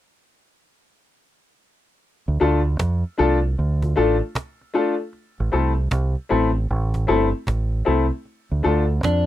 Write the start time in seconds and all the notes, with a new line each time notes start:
2.26 D2, cajon slap
2.40 D2 A3 D4 F4 A4, cajon slap
2.66 cajon slap
2.79 F2, cajon bass, cajon slap
3.04 cajon slap
3.18 C2 A3 D4 F4 A4, cajon slap
3.57 D2, cajon slap
3.82 F4 A4, cajon bass
3.96 A1 A3 D4 F4 A4
4.35 cajon bass, cajon slap
4.61 cajon slap
4.74 A3 D4 F4 A4, cajon slap
5.00 cajon slap
5.13 cajon slap
5.38 A1, cajon slap
5.52 C2 A3 C4 E4 A4, cajon slap
5.77 cajon slap
5.91 C2, cajon bass, cajon slap
6.15 cajon slap
6.29 A1 A3 C4 E4 A4, cajon slap
6.69 A1, cajon slap
6.94 cajon bass, cajon slap
7.07 G1 A3 C4 E4 A4, cajon slap
7.47 A1, cajon bass, cajon slap
7.73 cajon slap
7.85 C2 A3 C4 E4 A4, cajon slap
8.12 cajon slap
8.25 cajon slap
8.50 D2, cajon slap
8.63 D2 A3 D4 F4 A4, cajon slap
8.90 cajon slap
9.03 F2 D4, cajon bass, cajon slap